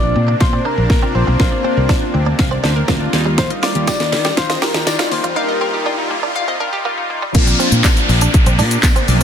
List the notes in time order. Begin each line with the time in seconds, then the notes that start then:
Already playing: C3 A#3 C4 D4 F4 D5, riser
0.03 A#1 D4
0.16 A#2 C4, muted clean electric guitar stroke
0.28 A#3 D4
0.40 A#2 C5 F5, muted clean electric guitar stroke, kick, snare
0.53 C4 D5
0.65 D4 A#4 C5
0.78 A#1 A#4
0.90 A#2 A#3 C4 D4 F4 A#4, kick, snare
1.02 C4 D4
1.15 A#1 C4 C5, muted clean electric guitar stroke
1.27 B1 A#3 C4
1.39 A#3 C4 D4 F4 F5, kick, snare
1.52 D5, muted clean electric guitar stroke
1.64 C4 C5
1.77 C2 A#4
1.89 D4 F4, kick, snare
2.02 D4
2.14 D2 C4, muted clean electric guitar stroke
2.26 A#3 D4
2.39 C2 F5, muted clean electric guitar stroke, kick, snare
2.51 C4 D5
2.63 D2 D4 C5, snare
2.76 A#4
2.88 D2 A#3 C4 D4 F4, kick, snare
3.01 D4
3.13 D#2 D#3 G3 A#3 D#4 F4, muted clean electric guitar stroke, snare
3.26 G3
3.38 D#4 C5 F5, kick, snare, closed hi-hat
3.50 D#5, muted clean electric guitar stroke, closed hi-hat
3.63 F4 A#4 D5, snare, open hi-hat
3.75 D#2 G4, closed hi-hat
3.87 F4 G4 D5, kick, snare, closed hi-hat, tambourine
4.00 D#2 D#4, snare, closed hi-hat
4.12 D#3 A#3, muted clean electric guitar stroke, snare, open hi-hat
4.25 G3 G4, snare, closed hi-hat
4.37 D#3 C5 F5, muted clean electric guitar stroke, kick, snare, closed hi-hat
4.50 F4 D#5, snare, closed hi-hat
4.62 G4 A#4, snare, open hi-hat
4.74 D#2 G4, snare, closed hi-hat
4.86 D#3 G3 A#3 D#4 F4 D5, snare, closed hi-hat, tambourine
4.99 D#4 F4, snare, closed hi-hat
5.11 D#2 A#3 C5, muted clean electric guitar stroke, open hi-hat
5.24 E2 G3 F4, closed hi-hat
5.36 G3 A#3 D#4 G4 A#4 F5
5.49 D#5, muted clean electric guitar stroke
5.61 C4 A#4
5.74 G4
5.86 D4 F4
5.98 D#4
6.11 A#3, muted clean electric guitar stroke
6.23 G3 D4
6.35 F5, muted clean electric guitar stroke
6.48 C4 D#5
6.60 D4 A#4
6.73 G4
6.85 G3 A#3 D#4 F4
6.98 D#4
7.10 A#3, muted clean electric guitar stroke
7.22 G3
7.35 A#1 C3 F3 A#3 C4 D4 F4, kick, closed hi-hat, crash, downlifter, shaker
7.47 muted clean electric guitar stroke, closed hi-hat, shaker
7.60 C4, open hi-hat, shaker
7.72 A#2, closed hi-hat, shaker
7.84 D4, kick, snare, clap, closed hi-hat, tambourine, shaker
7.97 closed hi-hat, shaker
8.09 A#1, muted clean electric guitar stroke, open hi-hat, shaker
8.21 D4, closed hi-hat, shaker
8.34 muted clean electric guitar stroke, kick, closed hi-hat, shaker
8.46 A#1 C4, closed hi-hat, shaker
8.59 A#2 D4, open hi-hat, shaker
8.71 closed hi-hat, shaker
8.83 kick, snare, clap, closed hi-hat, tambourine, shaker
8.96 C4, closed hi-hat, shaker
9.08 B1 F3 A#3 C4 D4 F4, muted clean electric guitar stroke, open hi-hat, shaker